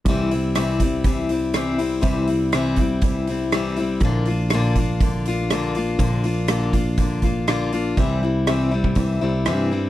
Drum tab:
HH |o-o-o-o-o-o-o-o-|o-o-o-o-o-o-o-o-|o-o-o-o-o-o-o-o-|o-o-o-o-o-o-o-o-|
SD |----r-------r---|----r-------r---|----r-------r---|----r-------r---|
BD |o-----o-o-------|o-----o-o-------|o-----o-o-------|o-----o-o-o-----|

HH |o---o---o---o---|
SD |----r-------r---|
BD |o------oo-------|